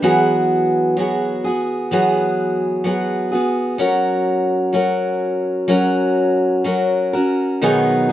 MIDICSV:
0, 0, Header, 1, 2, 480
1, 0, Start_track
1, 0, Tempo, 938967
1, 15, Time_signature, 4, 2, 24, 8
1, 2415, Tempo, 960000
1, 4114, End_track
2, 0, Start_track
2, 0, Title_t, "Steel-string acoustic guitar"
2, 0, Program_c, 0, 25
2, 12, Note_on_c, 0, 52, 68
2, 14, Note_on_c, 0, 54, 68
2, 18, Note_on_c, 0, 59, 77
2, 18, Note_on_c, 0, 66, 81
2, 21, Note_on_c, 0, 68, 75
2, 492, Note_off_c, 0, 54, 0
2, 494, Note_on_c, 0, 54, 56
2, 495, Note_off_c, 0, 52, 0
2, 495, Note_off_c, 0, 59, 0
2, 499, Note_off_c, 0, 68, 0
2, 501, Note_on_c, 0, 59, 49
2, 502, Note_off_c, 0, 66, 0
2, 504, Note_on_c, 0, 66, 55
2, 509, Note_on_c, 0, 68, 58
2, 732, Note_off_c, 0, 68, 0
2, 736, Note_off_c, 0, 54, 0
2, 738, Note_on_c, 0, 68, 47
2, 740, Note_off_c, 0, 59, 0
2, 741, Note_off_c, 0, 66, 0
2, 747, Note_on_c, 0, 66, 45
2, 752, Note_on_c, 0, 59, 40
2, 976, Note_off_c, 0, 68, 0
2, 977, Note_off_c, 0, 59, 0
2, 977, Note_on_c, 0, 52, 69
2, 980, Note_off_c, 0, 66, 0
2, 981, Note_on_c, 0, 54, 74
2, 983, Note_on_c, 0, 59, 71
2, 986, Note_on_c, 0, 66, 84
2, 987, Note_on_c, 0, 68, 81
2, 1450, Note_off_c, 0, 54, 0
2, 1452, Note_off_c, 0, 59, 0
2, 1452, Note_on_c, 0, 54, 58
2, 1455, Note_off_c, 0, 52, 0
2, 1458, Note_on_c, 0, 59, 61
2, 1460, Note_off_c, 0, 66, 0
2, 1460, Note_off_c, 0, 68, 0
2, 1462, Note_on_c, 0, 66, 65
2, 1466, Note_on_c, 0, 68, 59
2, 1688, Note_off_c, 0, 68, 0
2, 1693, Note_off_c, 0, 54, 0
2, 1695, Note_on_c, 0, 68, 46
2, 1696, Note_off_c, 0, 66, 0
2, 1697, Note_off_c, 0, 59, 0
2, 1702, Note_on_c, 0, 66, 48
2, 1709, Note_on_c, 0, 59, 44
2, 1933, Note_on_c, 0, 54, 72
2, 1934, Note_off_c, 0, 68, 0
2, 1935, Note_off_c, 0, 66, 0
2, 1936, Note_off_c, 0, 59, 0
2, 1938, Note_on_c, 0, 61, 67
2, 1941, Note_on_c, 0, 66, 75
2, 1945, Note_on_c, 0, 70, 80
2, 2414, Note_off_c, 0, 54, 0
2, 2416, Note_off_c, 0, 61, 0
2, 2416, Note_on_c, 0, 54, 54
2, 2422, Note_off_c, 0, 70, 0
2, 2422, Note_on_c, 0, 61, 57
2, 2425, Note_off_c, 0, 66, 0
2, 2427, Note_on_c, 0, 66, 62
2, 2431, Note_on_c, 0, 70, 65
2, 2889, Note_off_c, 0, 61, 0
2, 2890, Note_off_c, 0, 54, 0
2, 2892, Note_on_c, 0, 54, 78
2, 2895, Note_on_c, 0, 61, 82
2, 2896, Note_off_c, 0, 70, 0
2, 2898, Note_off_c, 0, 66, 0
2, 2900, Note_on_c, 0, 66, 86
2, 2902, Note_on_c, 0, 70, 76
2, 3373, Note_off_c, 0, 54, 0
2, 3374, Note_off_c, 0, 61, 0
2, 3375, Note_on_c, 0, 54, 59
2, 3380, Note_off_c, 0, 70, 0
2, 3380, Note_on_c, 0, 61, 60
2, 3383, Note_off_c, 0, 66, 0
2, 3385, Note_on_c, 0, 66, 58
2, 3388, Note_on_c, 0, 70, 70
2, 3614, Note_off_c, 0, 70, 0
2, 3617, Note_off_c, 0, 54, 0
2, 3620, Note_off_c, 0, 61, 0
2, 3620, Note_off_c, 0, 66, 0
2, 3620, Note_on_c, 0, 70, 54
2, 3626, Note_on_c, 0, 66, 52
2, 3635, Note_on_c, 0, 61, 42
2, 3859, Note_off_c, 0, 70, 0
2, 3860, Note_on_c, 0, 47, 69
2, 3862, Note_off_c, 0, 66, 0
2, 3863, Note_on_c, 0, 51, 79
2, 3864, Note_off_c, 0, 61, 0
2, 3864, Note_on_c, 0, 54, 77
2, 3866, Note_on_c, 0, 59, 83
2, 3868, Note_on_c, 0, 63, 85
2, 3870, Note_on_c, 0, 68, 88
2, 4091, Note_off_c, 0, 68, 0
2, 4097, Note_off_c, 0, 63, 0
2, 4097, Note_on_c, 0, 68, 53
2, 4099, Note_off_c, 0, 47, 0
2, 4100, Note_off_c, 0, 51, 0
2, 4101, Note_off_c, 0, 54, 0
2, 4102, Note_off_c, 0, 59, 0
2, 4114, Note_off_c, 0, 68, 0
2, 4114, End_track
0, 0, End_of_file